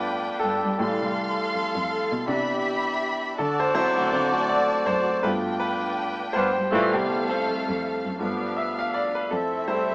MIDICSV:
0, 0, Header, 1, 6, 480
1, 0, Start_track
1, 0, Tempo, 740741
1, 1472, Time_signature, 4, 2, 24, 8
1, 6446, End_track
2, 0, Start_track
2, 0, Title_t, "Violin section"
2, 0, Program_c, 0, 48
2, 0, Note_on_c, 0, 62, 78
2, 0, Note_on_c, 0, 71, 77
2, 0, Note_on_c, 0, 79, 90
2, 499, Note_off_c, 0, 79, 0
2, 501, Note_off_c, 0, 62, 0
2, 501, Note_off_c, 0, 71, 0
2, 518, Note_on_c, 0, 69, 80
2, 520, Note_on_c, 0, 84, 94
2, 521, Note_on_c, 0, 77, 85
2, 1455, Note_off_c, 0, 69, 0
2, 1457, Note_off_c, 0, 77, 0
2, 1457, Note_off_c, 0, 84, 0
2, 1478, Note_on_c, 0, 83, 90
2, 1480, Note_on_c, 0, 67, 81
2, 1481, Note_on_c, 0, 76, 77
2, 2180, Note_off_c, 0, 83, 0
2, 2181, Note_off_c, 0, 67, 0
2, 2182, Note_off_c, 0, 76, 0
2, 2187, Note_on_c, 0, 66, 87
2, 2187, Note_on_c, 0, 74, 87
2, 2191, Note_on_c, 0, 81, 88
2, 3365, Note_off_c, 0, 66, 0
2, 3365, Note_off_c, 0, 74, 0
2, 3367, Note_off_c, 0, 81, 0
2, 3390, Note_on_c, 0, 62, 79
2, 3392, Note_on_c, 0, 71, 79
2, 3392, Note_on_c, 0, 79, 91
2, 4332, Note_off_c, 0, 62, 0
2, 4333, Note_off_c, 0, 71, 0
2, 4333, Note_off_c, 0, 79, 0
2, 4353, Note_on_c, 0, 77, 90
2, 4355, Note_on_c, 0, 57, 83
2, 4356, Note_on_c, 0, 69, 80
2, 5295, Note_off_c, 0, 77, 0
2, 5296, Note_off_c, 0, 57, 0
2, 5296, Note_off_c, 0, 69, 0
2, 5307, Note_on_c, 0, 62, 68
2, 5308, Note_on_c, 0, 77, 77
2, 5312, Note_on_c, 0, 71, 66
2, 6017, Note_off_c, 0, 62, 0
2, 6018, Note_off_c, 0, 77, 0
2, 6020, Note_off_c, 0, 71, 0
2, 6036, Note_on_c, 0, 60, 75
2, 6036, Note_on_c, 0, 76, 82
2, 6039, Note_on_c, 0, 69, 76
2, 6446, Note_off_c, 0, 60, 0
2, 6446, Note_off_c, 0, 69, 0
2, 6446, Note_off_c, 0, 76, 0
2, 6446, End_track
3, 0, Start_track
3, 0, Title_t, "Grand piano"
3, 0, Program_c, 1, 0
3, 0, Control_c, 1, 64, 127
3, 0, Note_on_c, 1, 57, 57
3, 0, Note_on_c, 1, 59, 53
3, 0, Note_on_c, 1, 65, 66
3, 0, Note_on_c, 1, 71, 98
3, 0, Note_on_c, 1, 74, 104
3, 245, Note_off_c, 1, 57, 0
3, 247, Note_off_c, 1, 59, 0
3, 248, Note_off_c, 1, 65, 0
3, 255, Note_on_c, 1, 69, 84
3, 281, Note_off_c, 1, 71, 0
3, 507, Note_on_c, 1, 55, 60
3, 511, Note_on_c, 1, 57, 57
3, 516, Note_on_c, 1, 52, 70
3, 521, Control_c, 1, 64, 0
3, 524, Note_off_c, 1, 74, 0
3, 645, Control_c, 1, 64, 127
3, 843, Note_off_c, 1, 55, 0
3, 846, Note_off_c, 1, 57, 0
3, 848, Note_off_c, 1, 52, 0
3, 1197, Note_off_c, 1, 69, 0
3, 1466, Note_on_c, 1, 52, 55
3, 1470, Note_on_c, 1, 59, 49
3, 1473, Note_on_c, 1, 62, 64
3, 1480, Control_c, 1, 64, 0
3, 1609, Control_c, 1, 64, 127
3, 2163, Note_off_c, 1, 52, 0
3, 2165, Note_off_c, 1, 59, 0
3, 2166, Note_off_c, 1, 62, 0
3, 2192, Note_on_c, 1, 69, 88
3, 2201, Control_c, 1, 64, 0
3, 2312, Control_c, 1, 64, 127
3, 2331, Note_on_c, 1, 72, 97
3, 2335, Note_off_c, 1, 69, 0
3, 2418, Note_off_c, 1, 72, 0
3, 2426, Note_on_c, 1, 54, 61
3, 2428, Note_on_c, 1, 72, 112
3, 2430, Note_on_c, 1, 60, 56
3, 2433, Note_on_c, 1, 64, 69
3, 2909, Note_on_c, 1, 74, 99
3, 2924, Note_off_c, 1, 72, 0
3, 2963, Note_off_c, 1, 74, 0
3, 3150, Note_on_c, 1, 72, 97
3, 3363, Note_off_c, 1, 54, 0
3, 3365, Note_off_c, 1, 60, 0
3, 3366, Note_off_c, 1, 64, 0
3, 3389, Note_on_c, 1, 71, 97
3, 3391, Note_on_c, 1, 57, 56
3, 3394, Note_on_c, 1, 47, 54
3, 3397, Note_on_c, 1, 65, 61
3, 3398, Note_off_c, 1, 72, 0
3, 3398, Control_c, 1, 64, 0
3, 3443, Note_off_c, 1, 71, 0
3, 3516, Control_c, 1, 64, 127
3, 3627, Note_on_c, 1, 71, 95
3, 4083, Note_off_c, 1, 71, 0
3, 4102, Note_on_c, 1, 72, 98
3, 4325, Note_off_c, 1, 57, 0
3, 4327, Note_off_c, 1, 47, 0
3, 4329, Note_off_c, 1, 65, 0
3, 4349, Note_on_c, 1, 55, 60
3, 4351, Note_on_c, 1, 57, 58
3, 4355, Note_on_c, 1, 52, 63
3, 4362, Control_c, 1, 64, 0
3, 4479, Control_c, 1, 64, 127
3, 4684, Note_off_c, 1, 55, 0
3, 4686, Note_off_c, 1, 57, 0
3, 4688, Note_off_c, 1, 52, 0
3, 5042, Note_off_c, 1, 72, 0
3, 5307, Note_on_c, 1, 53, 51
3, 5312, Note_on_c, 1, 57, 47
3, 5314, Note_on_c, 1, 59, 55
3, 5322, Control_c, 1, 64, 0
3, 5441, Control_c, 1, 64, 127
3, 5551, Note_on_c, 1, 76, 90
3, 5695, Note_on_c, 1, 77, 91
3, 5696, Note_off_c, 1, 76, 0
3, 5788, Note_off_c, 1, 77, 0
3, 5793, Note_on_c, 1, 74, 91
3, 5826, Note_off_c, 1, 74, 0
3, 5930, Note_on_c, 1, 71, 86
3, 5962, Note_off_c, 1, 71, 0
3, 6006, Note_off_c, 1, 53, 0
3, 6009, Note_off_c, 1, 57, 0
3, 6010, Note_off_c, 1, 59, 0
3, 6030, Note_on_c, 1, 69, 83
3, 6042, Control_c, 1, 64, 0
3, 6160, Control_c, 1, 64, 127
3, 6269, Note_on_c, 1, 64, 55
3, 6270, Note_on_c, 1, 55, 52
3, 6270, Note_on_c, 1, 72, 93
3, 6276, Note_on_c, 1, 57, 60
3, 6281, Note_off_c, 1, 69, 0
3, 6446, Note_off_c, 1, 55, 0
3, 6446, Note_off_c, 1, 57, 0
3, 6446, Note_off_c, 1, 64, 0
3, 6446, Note_off_c, 1, 72, 0
3, 6446, End_track
4, 0, Start_track
4, 0, Title_t, "Clean electric guitar"
4, 0, Program_c, 2, 27
4, 2572, Note_on_c, 2, 57, 64
4, 2575, Note_on_c, 2, 66, 63
4, 2667, Note_off_c, 2, 66, 0
4, 2668, Note_off_c, 2, 57, 0
4, 2674, Note_on_c, 2, 69, 80
4, 2677, Note_on_c, 2, 60, 70
4, 2805, Note_off_c, 2, 69, 0
4, 2807, Note_off_c, 2, 60, 0
4, 2810, Note_on_c, 2, 66, 71
4, 2815, Note_on_c, 2, 57, 60
4, 3365, Note_off_c, 2, 66, 0
4, 3368, Note_off_c, 2, 57, 0
4, 4356, Note_on_c, 2, 65, 66
4, 4360, Note_on_c, 2, 57, 56
4, 4487, Note_off_c, 2, 65, 0
4, 4489, Note_off_c, 2, 57, 0
4, 4491, Note_on_c, 2, 59, 60
4, 4493, Note_on_c, 2, 67, 74
4, 4719, Note_off_c, 2, 67, 0
4, 4720, Note_off_c, 2, 59, 0
4, 4727, Note_on_c, 2, 69, 68
4, 4731, Note_on_c, 2, 60, 58
4, 5285, Note_off_c, 2, 69, 0
4, 5287, Note_off_c, 2, 60, 0
4, 6446, End_track
5, 0, Start_track
5, 0, Title_t, "Horn section"
5, 0, Program_c, 3, 61
5, 4109, Note_on_c, 3, 65, 83
5, 4110, Note_on_c, 3, 62, 75
5, 4111, Note_on_c, 3, 59, 73
5, 4213, Note_off_c, 3, 62, 0
5, 4213, Note_off_c, 3, 65, 0
5, 4215, Note_off_c, 3, 59, 0
5, 4350, Note_on_c, 3, 57, 86
5, 4351, Note_on_c, 3, 52, 96
5, 4351, Note_on_c, 3, 60, 83
5, 4504, Note_off_c, 3, 57, 0
5, 4504, Note_off_c, 3, 60, 0
5, 4505, Note_off_c, 3, 52, 0
5, 5310, Note_on_c, 3, 59, 64
5, 5311, Note_on_c, 3, 55, 67
5, 5311, Note_on_c, 3, 62, 68
5, 5783, Note_off_c, 3, 59, 0
5, 5784, Note_off_c, 3, 55, 0
5, 5784, Note_off_c, 3, 62, 0
5, 6028, Note_on_c, 3, 57, 70
5, 6030, Note_on_c, 3, 60, 68
5, 6030, Note_on_c, 3, 64, 83
5, 6446, Note_off_c, 3, 57, 0
5, 6446, Note_off_c, 3, 60, 0
5, 6446, Note_off_c, 3, 64, 0
5, 6446, End_track
6, 0, Start_track
6, 0, Title_t, "Cello"
6, 0, Program_c, 4, 42
6, 0, Note_on_c, 4, 43, 114
6, 148, Note_off_c, 4, 43, 0
6, 277, Note_on_c, 4, 43, 84
6, 400, Note_off_c, 4, 43, 0
6, 414, Note_on_c, 4, 55, 93
6, 503, Note_off_c, 4, 55, 0
6, 515, Note_on_c, 4, 45, 107
6, 649, Note_off_c, 4, 45, 0
6, 653, Note_on_c, 4, 36, 86
6, 867, Note_off_c, 4, 36, 0
6, 995, Note_on_c, 4, 41, 52
6, 1098, Note_off_c, 4, 41, 0
6, 1136, Note_on_c, 4, 41, 96
6, 1224, Note_off_c, 4, 41, 0
6, 1372, Note_on_c, 4, 47, 98
6, 1462, Note_off_c, 4, 47, 0
6, 1478, Note_on_c, 4, 48, 109
6, 2169, Note_off_c, 4, 48, 0
6, 2197, Note_on_c, 4, 50, 96
6, 2409, Note_off_c, 4, 50, 0
6, 2580, Note_on_c, 4, 50, 50
6, 2651, Note_off_c, 4, 50, 0
6, 2678, Note_on_c, 4, 50, 82
6, 2889, Note_off_c, 4, 50, 0
6, 3154, Note_on_c, 4, 42, 98
6, 3367, Note_off_c, 4, 42, 0
6, 3397, Note_on_c, 4, 43, 106
6, 3988, Note_off_c, 4, 43, 0
6, 4116, Note_on_c, 4, 43, 90
6, 4238, Note_off_c, 4, 43, 0
6, 4256, Note_on_c, 4, 55, 93
6, 4344, Note_off_c, 4, 55, 0
6, 4359, Note_on_c, 4, 45, 99
6, 4493, Note_off_c, 4, 45, 0
6, 4497, Note_on_c, 4, 36, 87
6, 4709, Note_off_c, 4, 36, 0
6, 4839, Note_on_c, 4, 41, 48
6, 4939, Note_off_c, 4, 41, 0
6, 4977, Note_on_c, 4, 41, 96
6, 5065, Note_off_c, 4, 41, 0
6, 5215, Note_on_c, 4, 42, 91
6, 5304, Note_off_c, 4, 42, 0
6, 5317, Note_on_c, 4, 43, 99
6, 6011, Note_off_c, 4, 43, 0
6, 6035, Note_on_c, 4, 41, 94
6, 6250, Note_off_c, 4, 41, 0
6, 6416, Note_on_c, 4, 41, 42
6, 6446, Note_off_c, 4, 41, 0
6, 6446, End_track
0, 0, End_of_file